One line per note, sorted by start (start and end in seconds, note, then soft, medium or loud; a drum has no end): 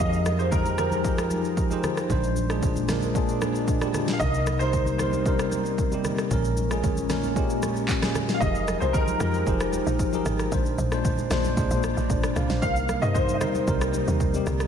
0.00 2.06 F2 medium
0.00 0.31 F3 medium
0.00 2.08 F3 medium
0.00 2.08 G#3 medium
0.00 0.31 D#4 medium
0.00 2.08 D#4 medium
0.00 0.12 F4 medium
0.00 0.31 G4 medium
0.00 0.32 G#4 medium
0.00 2.08 A#4 medium
0.00 0.32 A#4 medium
0.00 0.12 C#5 medium
0.00 0.40 D#5 loud
0.00 2.08 G5 medium
0.00 low conga medium
0.13 shaker soft
0.25 cross-stick medium
0.25 high conga medium
0.25 shaker medium
0.38 0.70 F3 medium
0.38 0.71 D#4 medium
0.38 0.71 G4 medium
0.38 0.71 G#4 medium
0.38 0.44 C5 medium
0.38 0.72 C5 medium
0.38 shaker soft
0.51 0.76 A#4 medium
0.51 kick loud
0.51 low conga medium
0.51 shaker medium
0.65 high conga medium
0.65 shaker soft
0.77 0.99 F3 medium
0.77 0.99 D#4 medium
0.77 1.00 G4 medium
0.77 1.00 G#4 medium
0.77 1.79 A#4 medium
0.77 1.01 C5 medium
0.77 cross-stick medium
0.77 low conga medium
0.77 shaker medium
0.92 high conga medium
0.92 shaker soft
1.04 1.57 F3 medium
1.04 1.57 D#4 medium
1.04 1.57 G4 medium
1.04 1.58 G#4 medium
1.04 1.58 A#4 medium
1.04 kick loud
1.04 shaker medium
1.18 cross-stick loud
1.18 shaker medium
1.31 high conga medium
1.31 shaker medium
1.45 shaker medium
1.57 kick medium
1.57 shaker medium
1.70 2.02 F3 medium
1.70 2.02 D#4 medium
1.70 2.03 G4 medium
1.70 2.03 G#4 medium
1.70 2.03 C5 loud
1.70 high conga medium
1.70 shaker medium
1.83 cross-stick medium
1.83 low conga medium
1.83 shaker medium
1.97 cross-stick medium
1.97 shaker soft
2.09 4.16 A#1 medium
2.09 2.41 A#2 medium
2.09 2.42 G#3 medium
2.09 4.18 G#3 medium
2.09 6.27 A#3 medium
2.09 4.18 D4 medium
2.09 2.42 D4 medium
2.09 2.43 C5 loud
2.09 kick loud
2.09 low conga medium
2.09 shaker medium
2.24 shaker soft
2.36 high conga medium
2.36 shaker medium
2.49 2.81 A#2 medium
2.49 2.81 G#3 medium
2.49 2.82 D4 medium
2.49 2.82 G#4 medium
2.49 cross-stick medium
2.49 shaker soft
2.62 kick medium
2.62 low conga medium
2.62 shaker medium
2.76 high conga medium
2.76 shaker medium
2.88 3.10 A#2 medium
2.88 3.10 G#3 medium
2.88 3.11 D4 medium
2.88 3.11 A#4 medium
2.88 cross-stick medium
2.88 snare medium
2.88 low conga medium
2.88 shaker loud
3.02 high conga medium
3.02 shaker soft
3.14 3.67 A#2 medium
3.14 3.68 G#3 medium
3.14 3.68 D4 medium
3.14 3.69 G#4 loud
3.14 kick loud
3.14 shaker medium
3.29 shaker medium
3.41 cross-stick loud
3.41 high conga medium
3.41 shaker medium
3.55 shaker medium
3.68 kick medium
3.68 shaker medium
3.80 4.12 A#2 medium
3.80 4.13 G#3 medium
3.80 4.13 D4 medium
3.80 4.14 G4 loud
3.80 cross-stick loud
3.80 high conga medium
3.80 shaker medium
3.94 cross-stick medium
3.94 low conga medium
3.94 shaker medium
4.08 snare medium
4.08 shaker soft
4.13 4.20 F5 medium
4.19 6.27 C2 medium
4.19 4.52 C3 medium
4.19 6.29 C3 medium
4.19 4.52 G3 medium
4.19 6.29 G3 medium
4.19 6.29 D#4 medium
4.19 4.53 D#4 medium
4.19 4.53 A#4 medium
4.19 4.61 D#5 loud
4.19 kick loud
4.19 low conga medium
4.19 shaker medium
4.34 shaker soft
4.47 cross-stick medium
4.47 high conga medium
4.47 shaker medium
4.59 4.91 C3 medium
4.59 4.92 G3 medium
4.59 4.92 D#4 medium
4.59 4.93 A#4 medium
4.59 4.97 C5 loud
4.59 shaker soft
4.73 kick medium
4.73 low conga medium
4.73 shaker medium
4.86 high conga medium
4.86 shaker medium
4.98 5.20 C3 medium
4.98 5.21 G3 medium
4.98 5.21 D#4 medium
4.98 5.22 A#4 medium
4.98 6.00 C5 medium
4.98 cross-stick medium
4.98 low conga medium
4.98 shaker loud
5.13 high conga medium
5.13 shaker soft
5.25 5.78 C3 medium
5.25 5.78 G3 medium
5.25 5.33 C#4 medium
5.25 5.79 A#4 medium
5.25 kick loud
5.25 shaker medium
5.33 5.82 D#4 medium
5.39 cross-stick loud
5.39 shaker medium
5.52 high conga medium
5.52 shaker medium
5.66 shaker medium
5.78 kick medium
5.78 shaker medium
5.91 6.23 C3 medium
5.91 6.23 G3 medium
5.91 6.24 D#4 medium
5.91 6.25 G4 medium
5.91 high conga medium
5.91 shaker soft
6.04 cross-stick medium
6.04 low conga medium
6.04 shaker medium
6.18 cross-stick medium
6.18 shaker soft
6.30 8.37 A#1 medium
6.30 6.62 A#2 medium
6.30 6.63 G#3 medium
6.30 8.39 G#3 medium
6.30 8.39 A#3 medium
6.30 8.39 C#4 medium
6.30 6.63 C#4 medium
6.30 6.64 A#4 loud
6.30 kick loud
6.30 low conga medium
6.30 shaker medium
6.45 shaker soft
6.57 high conga medium
6.57 shaker medium
6.70 7.02 A#2 medium
6.70 7.02 G#3 medium
6.70 7.03 C#4 medium
6.70 7.03 G#4 loud
6.70 cross-stick medium
6.70 shaker soft
6.83 kick medium
6.83 low conga medium
6.83 shaker medium
6.97 high conga medium
6.97 shaker medium
7.09 7.31 A#2 medium
7.09 7.31 G#3 medium
7.09 7.32 C#4 medium
7.09 7.32 A#4 medium
7.09 cross-stick medium
7.09 snare medium
7.09 low conga medium
7.09 shaker loud
7.23 high conga medium
7.23 shaker soft
7.35 7.88 A#2 medium
7.35 7.89 G#3 medium
7.35 7.89 C#4 medium
7.35 7.90 G4 loud
7.35 kick loud
7.35 shaker medium
7.50 shaker medium
7.62 cross-stick medium
7.62 high conga medium
7.62 shaker loud
7.76 shaker medium
7.89 kick loud
7.89 clap loud
7.89 shaker medium
8.02 8.33 A#2 medium
8.02 8.34 G#3 medium
8.02 8.34 C#4 medium
8.02 8.35 G#4 loud
8.02 cross-stick loud
8.02 snare medium
8.02 high conga medium
8.02 shaker soft
8.15 cross-stick medium
8.15 low conga medium
8.15 shaker medium
8.29 snare medium
8.29 shaker soft
8.34 8.41 F5 medium
8.40 8.77 F1 loud
8.40 8.73 F3 medium
8.40 10.50 F3 medium
8.40 10.50 G#3 medium
8.40 8.73 D#4 medium
8.40 10.50 D#4 medium
8.40 8.74 G4 medium
8.40 8.74 G#4 medium
8.40 10.50 A#4 medium
8.40 8.74 A#4 medium
8.40 8.82 D#5 loud
8.40 10.50 G5 medium
8.40 kick loud
8.40 low conga medium
8.40 shaker medium
8.55 shaker soft
8.68 cross-stick medium
8.68 high conga medium
8.68 shaker medium
8.80 9.16 C2 medium
8.80 9.12 F3 medium
8.80 9.13 D#4 medium
8.80 9.13 G4 medium
8.80 9.14 G#4 medium
8.80 8.93 C5 medium
8.80 9.14 C5 medium
8.80 shaker soft
8.93 9.18 A#4 medium
8.93 kick loud
8.93 low conga medium
8.93 shaker medium
9.07 high conga medium
9.07 shaker medium
9.20 9.44 F2 loud
9.20 9.41 F3 medium
9.20 9.42 D#4 medium
9.20 9.42 G4 medium
9.20 9.42 G#4 medium
9.20 10.21 A#4 medium
9.20 9.43 A#4 medium
9.20 cross-stick medium
9.20 low conga medium
9.20 shaker loud
9.34 high conga medium
9.34 shaker soft
9.46 9.82 F1 medium
9.46 9.99 F3 medium
9.46 9.99 D#4 medium
9.46 10.00 G4 medium
9.46 10.00 G#4 medium
9.46 10.00 C5 medium
9.46 kick loud
9.46 shaker medium
9.60 cross-stick loud
9.60 shaker medium
9.73 high conga medium
9.73 shaker loud
9.87 10.21 A#1 medium
9.87 shaker medium
9.99 kick medium
9.99 shaker medium
10.12 10.44 F3 medium
10.12 10.44 D#4 medium
10.12 10.45 G4 medium
10.12 10.45 G#4 medium
10.12 10.45 A#4 loud
10.12 high conga medium
10.12 shaker medium
10.25 10.49 G#1 medium
10.25 cross-stick medium
10.25 low conga medium
10.25 shaker medium
10.39 cross-stick medium
10.39 shaker soft
10.51 10.75 A#1 loud
10.51 10.83 A#2 medium
10.51 10.84 G#3 medium
10.51 12.60 G#3 medium
10.51 14.67 A#3 medium
10.51 12.60 D4 medium
10.51 10.84 D4 medium
10.51 10.85 C5 loud
10.51 kick loud
10.51 low conga medium
10.51 shaker medium
10.66 shaker soft
10.78 11.25 A#1 medium
10.78 high conga medium
10.78 shaker medium
10.91 11.23 A#2 medium
10.91 11.23 G#3 medium
10.91 11.24 D4 medium
10.91 11.24 C5 loud
10.91 cross-stick medium
10.91 shaker soft
11.04 kick loud
11.04 low conga medium
11.04 shaker medium
11.18 high conga medium
11.18 shaker medium
11.30 11.54 A#1 loud
11.30 11.52 A#2 medium
11.30 11.52 G#3 medium
11.30 11.53 D4 medium
11.30 11.53 C5 medium
11.30 cross-stick medium
11.30 snare medium
11.30 low conga medium
11.30 shaker medium
11.44 high conga medium
11.44 shaker soft
11.56 11.69 C2 medium
11.56 12.09 A#2 medium
11.56 12.10 G#3 medium
11.56 12.10 D4 medium
11.56 11.85 C5 loud
11.56 kick loud
11.56 shaker medium
11.71 11.94 A#1 loud
11.71 shaker medium
11.83 cross-stick loud
11.83 high conga medium
11.83 shaker loud
11.97 12.08 A#1 medium
11.97 shaker medium
12.10 12.33 G#1 medium
12.10 12.35 F4 medium
12.10 12.35 D5 medium
12.10 kick loud
12.10 shaker medium
12.23 cross-stick loud
12.23 high conga medium
12.23 shaker soft
12.36 12.48 C2 medium
12.36 12.50 G#4 medium
12.36 12.49 F5 medium
12.36 cross-stick medium
12.36 low conga medium
12.36 shaker medium
12.50 12.61 A#1 medium
12.50 12.75 C5 medium
12.50 snare medium
12.50 shaker soft
12.61 12.98 C2 loud
12.61 12.94 C3 medium
12.61 14.67 C3 medium
12.61 14.67 G3 medium
12.61 12.94 G3 medium
12.61 14.67 D#4 medium
12.61 12.95 D#4 medium
12.61 12.95 A#4 medium
12.61 13.03 F5 loud
12.61 kick loud
12.61 low conga medium
12.61 shaker medium
12.76 shaker soft
12.89 cross-stick medium
12.89 high conga medium
12.89 shaker medium
13.01 13.43 G2 medium
13.01 13.33 C3 medium
13.01 13.34 G3 medium
13.01 13.34 D#4 medium
13.01 13.35 C5 medium
13.01 13.15 D#5 medium
13.01 shaker soft
13.14 13.35 C5 loud
13.14 kick loud
13.14 low conga medium
13.14 shaker medium
13.28 high conga medium
13.28 shaker medium
13.34 13.41 D#5 medium
13.40 13.62 C3 medium
13.40 13.65 C3 loud
13.40 13.63 G3 medium
13.40 13.63 D#4 medium
13.40 13.64 A#4 medium
13.40 14.42 C5 medium
13.40 cross-stick medium
13.40 low conga medium
13.40 shaker medium
13.55 high conga medium
13.55 shaker soft
13.66 14.03 C2 medium
13.66 14.20 C3 medium
13.66 14.20 G3 medium
13.66 14.21 D#4 medium
13.66 14.21 A#4 medium
13.66 kick loud
13.66 shaker medium
13.81 cross-stick loud
13.81 shaker medium
13.94 high conga medium
13.94 shaker loud
14.08 14.42 D#2 medium
14.08 shaker medium
14.20 kick medium
14.20 shaker medium
14.33 14.65 C3 medium
14.33 14.65 G3 medium
14.33 14.66 D#4 medium
14.33 14.66 G4 loud
14.33 high conga medium
14.33 shaker soft
14.46 14.67 C2 loud
14.46 cross-stick medium
14.46 low conga medium
14.46 shaker medium
14.60 cross-stick medium
14.60 shaker soft